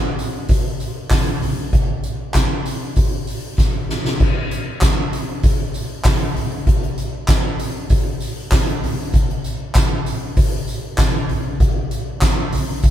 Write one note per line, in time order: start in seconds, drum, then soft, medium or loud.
0.19 hi-hat pedal medium
0.19 open hi-hat medium
0.19 tambourine medium
0.49 kick loud
0.49 hi-hat pedal medium
0.49 open hi-hat loud
0.49 tambourine medium
0.80 hi-hat pedal medium
0.80 open hi-hat medium
0.80 tambourine medium
1.10 kick loud
1.10 snare loud
1.10 clap medium
1.10 hi-hat pedal medium
1.10 open hi-hat medium
1.10 tambourine medium
1.42 floor tom medium
1.42 hi-hat pedal medium
1.42 open hi-hat medium
1.42 tambourine soft
1.73 kick loud
1.73 hi-hat pedal medium
1.73 open hi-hat medium
1.73 tambourine soft
2.04 hi-hat pedal medium
2.04 open hi-hat medium
2.04 tambourine medium
2.34 kick loud
2.34 snare loud
2.34 clap medium
2.34 hi-hat pedal medium
2.34 open hi-hat medium
2.34 tambourine medium
2.66 hi-hat pedal medium
2.66 open hi-hat medium
2.66 tambourine medium
2.96 kick loud
2.96 hi-hat pedal medium
2.96 open hi-hat loud
2.96 tambourine medium
3.27 hi-hat pedal medium
3.27 open hi-hat medium
3.27 tambourine medium
3.43 open hi-hat medium
3.58 kick loud
3.58 snare medium
3.58 tambourine medium
3.89 snare medium
4.05 snare medium
4.20 kick loud
4.20 crash loud
4.20 tambourine soft
4.51 hi-hat pedal medium
4.51 open hi-hat medium
4.51 tambourine medium
4.81 kick loud
4.81 snare loud
4.81 clap medium
4.81 hi-hat pedal medium
4.81 open hi-hat medium
4.81 tambourine loud
5.13 hi-hat pedal medium
5.13 open hi-hat medium
5.13 tambourine medium
5.43 kick loud
5.43 hi-hat pedal medium
5.43 open hi-hat loud
5.43 tambourine medium
5.74 hi-hat pedal medium
5.74 open hi-hat medium
5.74 tambourine medium
6.05 kick loud
6.05 snare loud
6.05 clap medium
6.05 hi-hat pedal medium
6.05 open hi-hat medium
6.05 tambourine medium
6.36 floor tom medium
6.36 hi-hat pedal medium
6.36 open hi-hat medium
6.52 open hi-hat medium
6.67 kick loud
6.67 hi-hat pedal medium
6.67 open hi-hat medium
6.82 hi-hat pedal medium
6.98 hi-hat pedal medium
6.98 open hi-hat medium
6.98 tambourine medium
7.28 kick loud
7.28 snare loud
7.28 clap medium
7.28 hi-hat pedal medium
7.28 open hi-hat medium
7.28 tambourine medium
7.59 hi-hat pedal medium
7.59 open hi-hat medium
7.59 tambourine medium
7.90 kick loud
7.90 hi-hat pedal medium
7.90 open hi-hat loud
7.90 tambourine medium
8.20 hi-hat pedal medium
8.20 open hi-hat medium
8.20 tambourine medium
8.37 open hi-hat medium
8.52 kick loud
8.52 snare loud
8.52 clap medium
8.52 hi-hat pedal medium
8.52 open hi-hat medium
8.52 tambourine medium
8.68 hi-hat pedal medium
8.83 floor tom medium
8.83 hi-hat pedal medium
8.83 open hi-hat medium
8.83 tambourine soft
8.99 open hi-hat medium
9.13 kick loud
9.13 hi-hat pedal medium
9.13 open hi-hat medium
9.13 tambourine soft
9.29 hi-hat pedal medium
9.44 hi-hat pedal medium
9.44 open hi-hat medium
9.44 tambourine medium
9.75 kick loud
9.75 snare loud
9.75 clap medium
9.75 hi-hat pedal medium
9.75 open hi-hat medium
9.75 tambourine medium
10.06 hi-hat pedal medium
10.06 open hi-hat medium
10.06 tambourine medium
10.37 kick loud
10.37 hi-hat pedal medium
10.37 open hi-hat loud
10.37 tambourine medium
10.68 hi-hat pedal medium
10.68 open hi-hat medium
10.68 tambourine medium
10.98 kick loud
10.98 snare loud
10.98 clap medium
10.98 hi-hat pedal medium
10.98 open hi-hat medium
10.98 tambourine medium
11.29 floor tom medium
11.29 hi-hat pedal medium
11.29 open hi-hat medium
11.60 kick loud
11.60 hi-hat pedal medium
11.60 open hi-hat medium
11.60 tambourine soft
11.91 hi-hat pedal medium
11.91 open hi-hat medium
11.91 tambourine medium
12.21 kick loud
12.21 snare loud
12.21 clap medium
12.21 hi-hat pedal medium
12.21 open hi-hat medium
12.21 tambourine medium
12.53 floor tom medium
12.53 hi-hat pedal medium
12.53 open hi-hat medium
12.53 tambourine medium
12.83 kick loud
12.83 hi-hat pedal medium
12.83 open hi-hat loud
12.83 tambourine medium